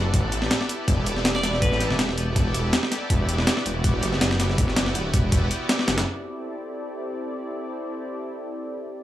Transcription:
Already playing: F#1 B3 D4 F#4 A4 D5
0.14 A1 B3 E4 G4 A4 D5, kick, closed hi-hat
0.32 closed hi-hat
0.42 snare
0.51 snare, closed hi-hat
0.61 snare
0.69 closed hi-hat
0.79 B3 E4 G4 A4 D5
0.88 E1, kick, closed hi-hat
1.06 closed hi-hat
1.16 snare
1.25 snare, closed hi-hat
1.35 D5, snare
1.43 B3 E4 G4 A4 D5, snare, closed hi-hat
1.53 snare
1.61 A1 B3 E4 G4 A4 B4 D5, kick, closed hi-hat
1.72 snare
1.80 snare, closed hi-hat
1.90 E1, snare
1.99 snare, closed hi-hat
2.09 snare
2.18 closed hi-hat
2.27 B3 E4 G4 A4 D5
2.36 kick, closed hi-hat
2.54 closed hi-hat
2.73 snare, closed hi-hat
2.83 snare
2.91 B3 E4 G4 A4 D5, snare, closed hi-hat
3.10 E1 B3 E4 F#4 G4 D5, kick, closed hi-hat
3.29 closed hi-hat
3.38 snare
3.47 snare, closed hi-hat
3.57 snare
3.66 E1, closed hi-hat
3.76 B3 E4 F#4 G4 D5
3.84 kick, closed hi-hat
4.03 F#1, closed hi-hat
4.13 snare
4.21 snare, closed hi-hat
4.31 snare
4.40 B3 E4 F#4 G4 D5, snare, closed hi-hat
4.50 snare
4.58 B3 E4 F#4 G4 D5, kick, closed hi-hat
4.68 snare
4.76 snare, closed hi-hat
4.86 snare
4.95 D1, closed hi-hat
5.14 E1, kick, closed hi-hat
5.23 B3 E4 F#4 G4 D5
5.32 kick, closed hi-hat
5.51 closed hi-hat
5.61 B3 E4 F#4 G4 D5
5.69 snare, closed hi-hat
5.79 snare
5.88 F#1, snare, closed hi-hat
5.98 snare, closed hi-hat
6.06 C4 E4 G4 A4 D5

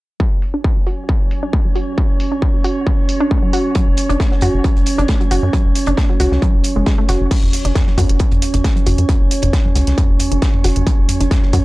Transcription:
0.20 F#3 C#4, kick
0.42 open hi-hat
0.54 D4
0.64 A3, kick
0.76 F#3
0.87 F#4, open hi-hat
1.09 F#3, kick
1.31 open hi-hat
1.43 D4
1.53 A3, kick
1.65 F#3
1.75 F#4, open hi-hat
1.98 F#3, kick
2.20 open hi-hat
2.32 D4
2.42 A3, kick
2.54 F#3
2.64 F#4, open hi-hat
2.87 F#3, kick
3.09 open hi-hat
3.20 D4
3.31 A3, kick
3.43 F#3
3.53 F#4, open hi-hat
3.75 F#3, kick, closed hi-hat
3.87 F#1
3.97 closed hi-hat, open hi-hat
4.09 F#1 D4, closed hi-hat
4.20 A3, kick, snare, closed hi-hat
4.31 F#3, snare
4.41 F#2 F#4, closed hi-hat, open hi-hat
4.54 F#1
4.64 F#3, kick, closed hi-hat
4.76 F#1, closed hi-hat
4.86 closed hi-hat, open hi-hat
4.98 F#1 D4, closed hi-hat
5.08 A3, kick, snare, closed hi-hat
5.21 F#3, closed hi-hat
5.31 F#1 F#4, closed hi-hat, open hi-hat
5.43 F#2
5.53 F#3, kick, closed hi-hat
5.65 F#1
5.75 closed hi-hat, open hi-hat
5.86 F#1 D4, closed hi-hat
5.97 A3, kick, snare, closed hi-hat
6.09 F#3
6.20 C#2 F#4, snare, closed hi-hat, open hi-hat
6.32 C#2, snare
6.42 F#3, kick, closed hi-hat
6.54 F#1
6.64 closed hi-hat, open hi-hat
6.76 F#1 G#3
6.86 G#3, kick, snare, closed hi-hat
6.98 A3
7.09 F#1 F#4, snare, closed hi-hat, open hi-hat
7.21 F#1
7.31 F#3 C#4, kick, closed hi-hat, crash
7.43 F#1, mid tom
7.53 closed hi-hat, open hi-hat
7.65 F#1 D4, closed hi-hat
7.75 A3, kick, snare, closed hi-hat, mid tom
7.87 F#3, snare
7.98 F#2 F#4, kick, closed hi-hat, mid tom, open hi-hat
8.09 F#1, closed hi-hat
8.19 F#3, kick, closed hi-hat
8.32 F#1, closed hi-hat, mid tom
8.42 closed hi-hat, open hi-hat
8.54 F#1 D4, closed hi-hat, mid tom
8.64 A3, kick, snare, closed hi-hat
8.76 F#3, closed hi-hat
8.86 F#1 F#4, closed hi-hat, mid tom, open hi-hat
8.98 F#2, closed hi-hat
9.09 F#3, kick, closed hi-hat, mid tom
9.21 F#1
9.31 closed hi-hat, open hi-hat
9.42 F#1 D4, closed hi-hat, mid tom
9.53 A3, kick, snare, closed hi-hat
9.65 F#3, mid tom
9.75 C#2 F#4, snare, closed hi-hat, open hi-hat
9.87 C#2, snare, closed hi-hat
9.98 F#3, kick, closed hi-hat, mid tom
10.09 F#1
10.20 closed hi-hat, mid tom, open hi-hat
10.32 F#1 D4, closed hi-hat
10.42 A3, kick, snare, closed hi-hat
10.54 F#3, mid tom
10.64 F#1 F#4, snare, closed hi-hat, open hi-hat
10.76 F#1, closed hi-hat, mid tom
10.87 F#3, kick, closed hi-hat
10.98 F#1
11.09 closed hi-hat, mid tom, open hi-hat
11.21 F#1 D4, closed hi-hat
11.31 A3, kick, snare, closed hi-hat, mid tom
11.43 F#3, snare
11.53 F#2 F#4, kick, closed hi-hat, open hi-hat

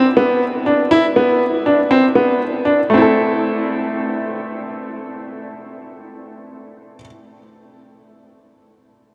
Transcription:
0.17 B3
0.66 D4
0.91 E4
1.16 B3
1.66 D4
1.91 C4
2.15 B3
2.65 D4
2.90 A3 C4
2.98 E4
3.02 A4

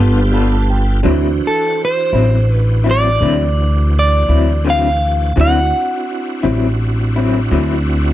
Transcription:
Already playing: G1 F4 G4 A4 B4
0.00 B3
0.31 G3 B3 F4 A4 B5
0.52 A5
0.70 G5
1.03 D2 D3 E3 F#3 C4 D4 E4 F#4 C5
1.47 A4
1.85 C5
2.13 A1 F#3 C4 E4
2.52 B4
2.84 F#3 C4 E4
2.91 D5
3.21 D2 D3 F#3 C4 E4
3.99 D5
4.29 D2 F#3 C4 E4
4.65 D3 F#3 C4 E4
4.70 F5
5.36 D2 D3 F#3 C4 D4 E4 F#4 D5
5.41 F#5
6.43 A1 F#3 C4 E4
7.16 F#3 C4 E4
7.51 D2 D3 F#3 C4 E4
7.63 E5

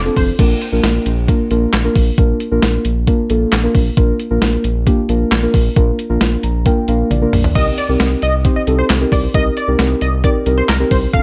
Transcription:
0.05 C4 D4 F4 A4
0.16 F1 C5, kick, open hi-hat
0.39 A#1 A#3 D4 F4 A#4, kick, closed hi-hat, crash
0.61 closed hi-hat
0.72 A#1 A#3 D4 F4 A#4
0.83 A#1, snare, closed hi-hat
1.06 A#1, closed hi-hat
1.28 A#3 D4 F4 A#4, kick, closed hi-hat
1.51 A#1 A#3 D4 F4 A#4, closed hi-hat
1.73 A#1, snare, clap, closed hi-hat
1.85 A#3 D4 F4 A#4
1.96 A#1, kick, open hi-hat
2.18 A#1 A#3 D4 F4 A#4, kick, closed hi-hat
2.40 closed hi-hat
2.52 A#1 A#3 D4 F4 A#4
2.62 A#1, snare, closed hi-hat
2.85 A#1, closed hi-hat
3.07 A#3 D4 F4 A#4, kick, closed hi-hat
3.30 A#1 A#3 D4 F4 A4, closed hi-hat
3.52 A#1, snare, clap, closed hi-hat
3.63 A#3 D4 F4 A#4
3.75 A#1, kick, open hi-hat
3.97 A#1 A#3 D4 F4 A#4, kick, closed hi-hat
4.20 closed hi-hat
4.31 A#1 A#3 D4 F4 A#4
4.42 A#1, snare, closed hi-hat
4.64 A#1, closed hi-hat
4.87 A#3 D4 F4 G4, kick, closed hi-hat
5.09 A#1 A#3 D4 F4 A#4, closed hi-hat
5.31 A#1, snare, clap, closed hi-hat
5.43 A#3 D4 F4 A#4
5.54 A#1, kick, open hi-hat
5.76 A#1 A#3 D4 F4 A#4, kick, closed hi-hat
5.99 closed hi-hat
6.10 A#1 A#3 D4 F4 A#4
6.21 A#1, snare, closed hi-hat
6.43 A#1 A#5, closed hi-hat
6.66 A#3 D4 F4 A#4 G5, kick, closed hi-hat
6.88 A#1 A#3 D4 F4 A#4 F5, closed hi-hat
7.11 A#1 D5, closed hi-hat, high tom
7.22 A#3 D4 F4 A#4
7.33 A#1, mid tom, open hi-hat
7.44 floor tom
7.55 C2 C4 D#4 G4 A#4 D#5, kick, crash
7.78 D5, closed hi-hat
7.89 C2 C4 D#4 G4 A#4
8.00 C2, snare, closed hi-hat
8.22 C2 D#5, closed hi-hat
8.45 C4 D#4 G4 C5, kick, closed hi-hat
8.56 D#5
8.67 C2 C4 D#4 G4 A4, closed hi-hat
8.79 C5
8.90 C2, snare, clap, closed hi-hat
9.01 C4 D#4 G4 A#4
9.12 C2 D5, kick, open hi-hat
9.34 C2 C4 D#4 G4 A#4 D#5, kick, closed hi-hat
9.57 D5, closed hi-hat
9.68 C2 C4 D#4 G4 A#4
9.79 C2, snare, closed hi-hat
10.01 C2 D#5, closed hi-hat
10.24 C4 D#4 G4 A#4 D5, kick, closed hi-hat
10.46 C2 C4 D#4 G4 A#4, closed hi-hat
10.58 C5
10.69 C2 A#4, snare, clap, closed hi-hat
10.80 C4 D#4 G4 A#4
10.91 C2 C5, kick, open hi-hat
11.13 F1 C4 D4 F4 A4 F5, kick, closed hi-hat

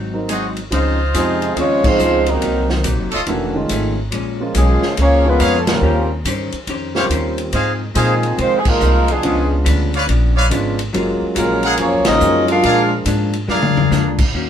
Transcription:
Already playing: G#1 G#2 F#3 C4 D#4
0.13 F#3 A#3 C4 D#4
0.29 G#2 F#3 C4 D#4 F#4 G#4 C5 D#5, hi-hat pedal, ride
0.57 ride
0.71 C#2 C#3 F3 G#3 C4 C#4 D#4 F4 C5 D#5 F5, ride
1.13 F2 C3 C#3 F3 G#3 C4 D#4 G#4, hi-hat pedal, ride
1.42 ride
1.56 D#2 C#3 F3 G#3 C4 C#4 D#4 F4, ride
1.60 C#5
1.83 F3 G#3 C4 C#4 D#4 F4 C5, muted upright bass stroke, kick, crash
1.98 C#2 C#3 F3 C4 D#4, hi-hat pedal
2.26 D#3 F#3 A#3 C4 D#4 A#4, ride
2.41 C2 C3 F#3 A#3 D#4, ride
2.69 D#3 F#3 A#3 C4 D#4, snare
2.83 A#1 C3 F#3 A#3 D#4, hi-hat pedal, ride
2.99 F#1
3.11 D#1 F4 A4 C#5 D#5, ride
3.26 F1 F2 D#3 E3 A3 A#3 C#4 D4 F#4, ride
3.54 D#3 G#3 A3 C#4 F4
3.69 G#1 F2 D#3 A3 C#4, hi-hat pedal, ride
4.11 A#1 A#2 F3 G#3 C#4, ride
4.40 F3 G#3 A#3 C#4 F4
4.55 B1 A#2 C#3 F3 G#3 A#3 C#4 G#4, hi-hat pedal, ride
4.82 muted upright bass stroke, snare
4.97 C#2 A#2 F3 G#3 C#4, ride
5.01 A#3 F4 G#4 C#5
5.25 F3 G#3 A#3 B3 C#4 F4
5.29 C#4 F4 B4
5.40 F2 A#2 F3 G#3 C#4 G#4 A#4 C#5 F5, hi-hat pedal, ride
5.59 A4
5.67 C#3 G3 A#3 C#4 F4 A#4, snare, ride
5.81 D#2 D#3 G3 A#3 C4 C#4 F4 G4 C5
6.25 G2 D#3 C#4 G4 C5, hi-hat pedal, ride
6.52 muted upright bass stroke, ride
6.67 F2 D#3 C#4 G4 C5, ride
6.94 G3 A#3 C4 C#4 F4 G4 C5 C#5 F5, snare
7.10 D#2 D#3 C#4 G4 C5, hi-hat pedal, ride
7.38 ride
7.53 G#2 F3 C4 D#4 G#4 C5 D#5 F5, ride
7.94 G#2 A#2 D#3 F3 G#3 C4 D#4 G#4 C5 D#5 F5, hi-hat pedal, ride
8.23 ride
8.37 G#2 C3 D#3 F3 G#3 C4 D#4 F4 C5, ride
8.58 G#4
8.65 D#3 F3 G#3 A#3 D#4 F4 A#4, kick, crash
8.80 C2 G#2 F3 C4 D#4, hi-hat pedal
9.08 B2 F3 G#3 B3 D4 G#4, ride
9.23 C#2 C#3 F3 G#3 B3 C#4 D4 F4, ride
9.64 D2 C#3 F3 B3 D4, hi-hat pedal, ride
9.94 B4 C#5 D5 F5, ride
10.06 A#1 C#3 F3 B3 D4, ride
10.36 B4 C#5 D5 F5
10.50 G#1 C#3 F3 G#3 B3 C#4 D4 F4, hi-hat pedal, ride
10.79 ride
10.93 F#1 F#3 G#3 A#3 C#4 F4 G#4, ride
11.22 muted upright bass stroke
11.35 A#1 C#3 F3 F#3 G#3 A#3 C#4 F4 G#4 A#4, hi-hat pedal, ride
11.63 G#4 A#4 F5 F#5, ride
11.77 F2 F3 F#3 A#3 C#4 F4 G#4 C#5, ride
11.93 C#2
12.05 A#1 F3 A#3 C#4 D#4 G#4 A#4 D#5, snare, ride
12.20 F#2 F#3 G#3 A#3 C#4 F4 G#4, hi-hat pedal
12.48 G#3 D4 F4 G#4 A#4 F5, ride
12.62 A#2 F3 G#3 A#3 D4 F4 G#4 A#4 D5 F5, ride
13.05 G#2 A#2 G#3 D4 F4, hi-hat pedal, ride
13.33 ride
13.47 F#2 A#2 G#3 D4 F4 G#4 A#4 D5 F5, snare
13.62 mid tom
13.77 floor tom
13.90 F2 A#2 G#3 D4 F4, snare, hi-hat pedal
14.06 D2
14.18 A#1, kick, crash
14.34 D#2 D#3 A#3 C#4 F#4

